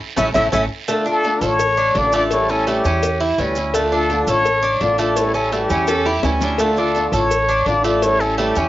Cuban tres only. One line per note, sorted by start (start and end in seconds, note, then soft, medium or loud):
0.16 0.28 A3 medium
0.16 0.28 C#4 medium
0.16 0.28 E4 medium
0.34 0.46 A3 medium
0.34 0.46 C#4 loud
0.34 0.46 E4 medium
0.52 0.64 A3 medium
0.52 0.64 C#4 medium
0.52 0.64 E4 medium
0.88 1.06 A3 medium
1.06 1.41 D4 medium
1.42 1.76 A4 medium
1.77 2.12 D4 medium
2.13 2.48 A3 medium
2.50 2.67 C#4 medium
2.67 2.84 A3 medium
2.85 3.20 C#4 medium
3.20 3.38 E4 medium
3.38 3.73 C#4 medium
3.74 3.91 A3 medium
3.92 4.27 D4 medium
4.28 4.62 A4 medium
4.63 4.98 D4 medium
4.99 5.33 A3 medium
5.34 5.52 C#4 medium
5.52 5.70 A3 medium
5.70 6.05 C#4 medium
6.06 6.23 E4 medium
6.24 6.59 C#4 medium
6.60 6.77 A3 medium
6.78 7.12 D4 medium
7.13 7.48 A4 medium
7.49 7.83 D4 medium
7.84 8.19 A3 medium
8.20 8.37 C#4 medium
8.38 8.55 A3 medium
8.56 8.69 C#4 medium